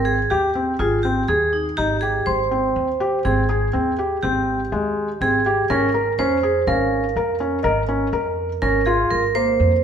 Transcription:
0.00 0.25 G#1 medium
0.00 0.17 C4 medium
0.05 0.31 G#4 medium
0.30 0.74 D#2 medium
0.30 0.81 G4 medium
0.30 0.49 G4 medium
0.55 0.73 C4 medium
0.79 1.23 G#1 medium
0.79 1.02 F4 medium
0.79 0.98 G#4 medium
1.03 1.22 C4 medium
1.03 1.29 G4 medium
1.28 1.72 D#2 medium
1.28 1.54 G#4 medium
1.28 1.65 G#4 medium
1.53 1.79 D#4 medium
1.77 2.22 G#1 medium
1.77 1.96 D#4 medium
1.77 2.00 G4 medium
2.01 2.38 G4 medium
2.01 2.27 G#4 medium
2.26 2.71 G#1 medium
2.26 3.28 C5 medium
2.26 2.99 C6 soft
2.51 2.87 C4 medium
2.76 3.20 D#2 medium
3.00 3.18 G4 medium
3.25 3.69 G#1 medium
3.25 3.43 C4 medium
3.25 4.26 G#4 medium
3.49 3.67 G#4 medium
3.73 4.18 D#2 medium
3.73 3.91 C4 medium
3.99 4.16 G4 medium
4.23 4.67 G#1 medium
4.23 4.59 C4 medium
4.23 5.24 G4 medium
4.72 5.16 D#2 medium
4.72 5.08 G#3 medium
5.21 5.64 G#1 medium
5.21 5.39 C4 medium
5.21 5.72 G#4 medium
5.46 5.63 G4 medium
5.70 6.13 G#1 medium
5.70 5.88 C#4 medium
5.70 6.20 A#4 medium
5.94 6.12 A#4 medium
6.19 6.62 F2 medium
6.19 6.37 C#4 medium
6.19 6.64 C5 medium
6.43 6.61 G#4 medium
6.67 7.11 G#1 medium
6.67 7.03 C#4 medium
6.67 8.61 A#4 medium
6.67 7.39 F5 soft
7.16 7.59 F2 medium
7.16 7.34 A#4 medium
7.40 7.58 C#4 medium
7.63 8.08 G#1 medium
7.63 7.82 A#4 medium
7.63 8.35 D#5 medium
7.89 8.07 C#4 medium
8.13 8.56 F2 medium
8.13 8.49 A#4 medium
8.62 9.06 G#1 medium
8.62 8.80 C#4 medium
8.62 8.87 A#4 medium
8.86 9.22 F4 medium
8.86 9.11 G#4 medium
9.10 9.55 G#1 medium
9.10 9.36 A#4 medium
9.35 9.71 A#3 medium
9.35 9.84 C5 medium
9.60 9.84 F2 medium

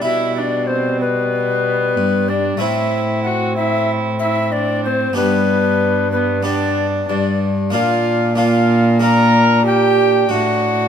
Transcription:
0.02 1.98 B2 medium
0.02 1.93 B2 medium
0.02 2.57 G3 medium
0.02 2.56 E4 soft
0.02 0.40 E4 medium
0.02 0.35 E5 medium
0.35 0.69 D4 medium
0.35 0.69 D5 medium
0.67 1.04 C4 medium
0.67 1.00 C5 medium
1.00 2.31 B3 medium
1.00 2.30 B4 medium
1.96 2.60 G2 medium
1.96 2.57 G2 soft
2.29 2.61 D4 medium
2.29 2.61 D5 medium
2.57 5.13 A2 medium
2.57 5.14 A2 medium
2.57 5.12 A3 soft
2.57 5.12 C4 soft
2.57 4.86 C4 medium
2.57 5.13 E4 medium
2.57 3.28 E4 medium
2.57 3.23 E5 medium
3.23 3.58 F#4 medium
3.23 3.55 F#5 medium
3.56 4.21 E4 medium
3.56 3.91 E5 loud
4.19 4.53 E4 medium
4.19 4.54 E5 loud
4.52 4.88 D4 medium
4.52 4.84 D5 medium
4.85 5.18 C4 medium
4.85 5.16 C5 medium
5.13 7.05 G2 medium
5.13 6.40 B3 medium
5.13 6.40 D4 medium
5.13 6.41 G4 medium
5.13 6.11 B4 loud
5.18 6.12 B3 medium
5.18 6.42 D4 medium
6.12 6.44 B3 medium
6.12 6.44 B4 medium
6.43 7.68 B3 medium
6.43 7.69 D4 medium
6.43 7.08 D4 medium
6.43 7.09 D4 medium
6.43 7.70 G4 medium
6.43 6.86 D5 medium
7.09 7.75 G2 medium
7.09 7.70 G2 medium
7.09 7.41 D4 medium
7.09 7.73 D4 medium
7.09 7.39 D5 medium
7.70 10.31 A#2 medium
7.70 8.34 A#3 medium
7.70 8.35 D4 medium
7.70 8.37 D4 medium
7.70 8.36 F4 medium
7.70 8.34 F4 medium
7.70 8.33 F5 loud
7.74 10.27 A#2 medium
8.36 8.98 A#3 medium
8.36 8.99 D4 medium
8.36 9.02 D4 medium
8.36 9.01 F4 medium
8.36 9.01 F5 loud
9.00 10.26 A#3 medium
9.00 10.26 D4 medium
9.00 10.29 D4 medium
9.00 10.27 F4 medium
9.00 9.65 A#4 medium
9.00 9.65 A#5 loud
9.66 10.29 G4 medium
9.66 10.32 G5 loud
10.29 10.88 A2 medium
10.29 10.88 D4 medium
10.29 10.88 F#4 medium
10.29 10.88 F#5 medium

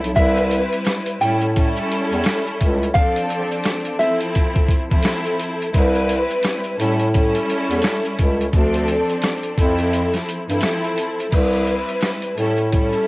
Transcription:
0.00 0.14 B1 medium
0.00 0.11 F3 loud
0.00 0.11 C4 loud
0.00 0.11 E4 loud
0.00 0.11 A4 loud
0.00 closed hi-hat medium
0.14 0.61 C2 loud
0.14 1.20 G3 loud
0.14 1.20 C4 medium
0.14 1.20 E4 loud
0.14 1.20 B4 loud
0.14 0.82 E5 loud
0.14 kick loud
0.14 closed hi-hat medium
0.37 closed hi-hat medium
0.51 closed hi-hat medium
0.73 closed hi-hat medium
0.85 cross-stick loud
0.85 snare loud
0.85 closed hi-hat medium
1.06 closed hi-hat medium
1.21 1.77 A2 loud
1.21 1.53 G3 loud
1.21 1.54 C#4 medium
1.21 1.54 E4 medium
1.21 1.54 A4 loud
1.21 1.40 G5 medium
1.21 closed hi-hat medium
1.41 closed hi-hat medium
1.56 2.86 G3 loud
1.56 2.86 C#4 loud
1.56 2.87 E4 loud
1.56 2.87 A4 loud
1.56 kick loud
1.56 closed hi-hat medium
1.77 closed hi-hat medium
1.92 closed hi-hat medium
2.12 2.23 E2 medium
2.12 closed hi-hat medium
2.24 cross-stick loud
2.24 snare loud
2.24 closed hi-hat loud
2.47 closed hi-hat medium
2.61 2.89 C#2 loud
2.61 kick loud
2.61 closed hi-hat medium
2.83 closed hi-hat medium
2.94 3.98 F3 loud
2.94 3.98 C4 loud
2.94 4.00 D4 loud
2.94 3.99 A4 loud
2.94 3.60 F5 loud
2.94 kick loud
2.94 closed hi-hat medium
3.16 closed hi-hat medium
3.30 closed hi-hat medium
3.52 closed hi-hat medium
3.64 cross-stick loud
3.64 snare loud
3.64 closed hi-hat medium
3.85 closed hi-hat medium
3.99 4.82 F3 loud
3.99 4.82 C4 loud
3.99 4.82 E4 medium
3.99 4.82 A4 loud
3.99 4.18 E5 medium
3.99 closed hi-hat medium
4.21 closed hi-hat medium
4.35 kick loud
4.35 closed hi-hat medium
4.56 kick medium
4.56 closed hi-hat medium
4.68 kick loud
4.68 closed hi-hat medium
4.91 5.69 F3 loud
4.91 5.69 C4 loud
4.91 5.69 E4 loud
4.91 5.69 A4 loud
4.91 kick loud
4.91 closed hi-hat medium
5.03 cross-stick medium
5.03 snare loud
5.03 closed hi-hat loud
5.26 closed hi-hat medium
5.39 closed hi-hat medium
5.62 closed hi-hat medium
5.73 6.20 C2 loud
5.73 6.78 G3 loud
5.73 6.78 C4 medium
5.73 6.78 E4 medium
5.73 6.79 B4 loud
5.73 kick loud
5.73 closed hi-hat medium
5.95 closed hi-hat medium
6.09 closed hi-hat medium
6.31 closed hi-hat medium
6.43 cross-stick loud
6.43 snare loud
6.43 closed hi-hat medium
6.64 closed hi-hat medium
6.79 7.35 A2 loud
6.79 7.12 G3 loud
6.79 7.12 C#4 medium
6.79 7.12 E4 medium
6.79 7.12 A4 loud
6.79 closed hi-hat medium
7.00 closed hi-hat medium
7.14 8.45 G3 loud
7.14 8.45 C#4 loud
7.14 8.45 E4 loud
7.14 8.45 A4 loud
7.14 kick loud
7.14 closed hi-hat medium
7.35 closed hi-hat medium
7.50 closed hi-hat medium
7.70 7.81 E2 medium
7.70 closed hi-hat medium
7.82 cross-stick medium
7.82 snare loud
7.82 closed hi-hat loud
8.05 closed hi-hat medium
8.19 8.47 C#2 loud
8.19 kick loud
8.19 closed hi-hat medium
8.41 closed hi-hat medium
8.53 8.99 D2 loud
8.53 9.56 F3 loud
8.53 9.57 C4 loud
8.53 9.59 D4 loud
8.53 9.57 A4 loud
8.53 kick loud
8.53 closed hi-hat medium
8.74 closed hi-hat medium
8.88 closed hi-hat medium
9.10 closed hi-hat medium
9.22 cross-stick loud
9.22 snare loud
9.22 closed hi-hat medium
9.43 closed hi-hat medium
9.57 10.14 F2 loud
9.57 10.40 F3 loud
9.57 10.40 C4 medium
9.57 10.40 E4 medium
9.57 10.41 A4 loud
9.57 kick loud
9.57 closed hi-hat medium
9.79 closed hi-hat medium
9.93 closed hi-hat medium
10.14 snare soft
10.14 closed hi-hat medium
10.29 closed hi-hat medium
10.49 10.60 G2 medium
10.49 11.27 F3 loud
10.49 11.27 C4 loud
10.49 11.27 E4 loud
10.49 11.27 A4 loud
10.49 closed hi-hat medium
10.61 cross-stick medium
10.61 snare loud
10.61 closed hi-hat loud
10.84 closed hi-hat medium
10.98 closed hi-hat medium
11.20 closed hi-hat medium
11.31 11.78 C2 loud
11.31 12.36 G3 loud
11.31 12.36 C4 medium
11.31 12.37 E4 medium
11.31 12.37 B4 loud
11.31 kick loud
11.31 closed hi-hat medium
11.31 crash medium
11.53 closed hi-hat medium
11.67 closed hi-hat medium
11.89 closed hi-hat medium
12.01 cross-stick loud
12.01 snare loud
12.01 closed hi-hat medium
12.22 closed hi-hat medium
12.37 12.94 A2 loud
12.37 12.70 G3 medium
12.37 12.70 C#4 medium
12.37 12.70 E4 medium
12.37 12.70 A4 loud
12.37 closed hi-hat medium
12.58 closed hi-hat medium
12.72 13.07 G3 loud
12.72 13.07 C#4 loud
12.72 13.07 E4 medium
12.72 13.07 A4 loud
12.72 kick loud
12.72 closed hi-hat medium
12.93 closed hi-hat medium

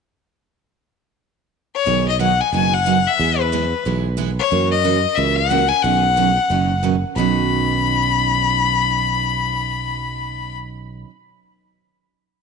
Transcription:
1.75 2.06 C#5 loud
1.86 2.40 B1 medium
1.86 2.07 B2 medium
1.86 2.07 D#3 medium
1.86 2.08 F#3 medium
1.86 2.08 B3 medium
1.86 2.08 D#4 medium
1.86 2.08 G#4 medium
2.09 2.20 D#5 medium
2.19 2.31 B2 medium
2.19 2.31 D#3 medium
2.19 2.31 F#3 medium
2.19 2.31 B3 medium
2.19 2.31 D#4 medium
2.19 2.32 G#4 medium
2.19 2.43 F#5 medium
2.41 2.53 G#5 medium
2.53 3.06 F#1 medium
2.53 2.74 B2 medium
2.53 2.74 D#3 medium
2.53 2.74 F#3 medium
2.53 2.75 B3 medium
2.53 2.74 D#4 medium
2.53 2.74 G#4 medium
2.53 2.75 G#5 medium
2.74 3.09 F#5 loud
2.86 2.97 B2 medium
2.86 2.97 D#3 medium
2.86 2.97 F#3 medium
2.86 2.98 B3 medium
2.86 2.98 D#4 medium
2.86 2.98 G#4 medium
3.07 3.42 E5 loud
3.19 3.73 E2 medium
3.19 3.40 E3 medium
3.19 3.41 G#3 medium
3.19 3.41 B3 medium
3.19 3.41 E4 medium
3.19 3.41 G#4 medium
3.41 3.86 B4 medium
3.52 3.64 E3 medium
3.52 3.64 G#3 medium
3.52 3.64 B3 medium
3.52 3.64 E4 medium
3.52 3.64 G#4 medium
3.85 4.39 B1 medium
3.85 4.06 E3 medium
3.85 4.07 G#3 medium
3.85 4.07 B3 medium
3.85 4.07 E4 medium
3.85 4.07 G#4 medium
4.17 4.29 E3 medium
4.17 4.29 G#3 medium
4.17 4.30 B3 medium
4.17 4.30 E4 medium
4.17 4.30 G#4 medium
4.39 4.70 C#5 medium
4.51 5.05 F#2 medium
4.51 4.72 C#3 medium
4.51 4.73 E3 medium
4.51 4.73 A#3 medium
4.51 4.73 C#4 medium
4.51 4.73 F#4 medium
4.71 5.16 D#5 medium
4.84 4.96 C#3 medium
4.84 4.96 E3 medium
4.84 4.96 A#3 medium
4.84 4.96 C#4 medium
4.84 4.96 F#4 medium
5.15 5.71 C#2 medium
5.15 5.38 C#3 medium
5.15 5.39 E3 medium
5.15 5.39 A#3 medium
5.15 5.39 C#4 medium
5.15 5.39 F#4 medium
5.15 5.37 E5 medium
5.36 5.70 F#5 loud
5.50 5.62 C#3 medium
5.50 5.62 E3 medium
5.50 5.62 A#3 medium
5.50 5.62 C#4 medium
5.50 5.63 F#4 medium
5.69 5.84 G#5 loud
5.82 6.37 B1 medium
5.82 6.05 B2 medium
5.82 6.05 D#3 medium
5.82 6.05 F#3 medium
5.82 6.05 C#4 medium
5.82 6.05 D#4 medium
5.82 6.82 F#5 loud
6.16 6.28 B2 medium
6.16 6.28 D#3 medium
6.16 6.29 F#3 medium
6.16 6.29 C#4 medium
6.16 6.29 D#4 medium
6.50 7.03 F#1 medium
6.50 6.71 B2 medium
6.50 6.71 D#3 soft
6.50 6.71 F#3 medium
6.50 6.71 C#4 medium
6.50 6.72 D#4 medium
6.83 6.94 B2 medium
6.83 6.94 D#3 medium
6.83 6.95 F#3 medium
6.83 6.95 C#4 medium
6.83 6.95 D#4 medium
7.16 11.04 B1 medium
7.16 11.07 B2 medium
7.16 11.09 D#3 medium
7.16 11.10 F#3 medium
7.16 11.10 C#4 medium
7.16 11.11 D#4 medium
7.16 10.56 B5 loud

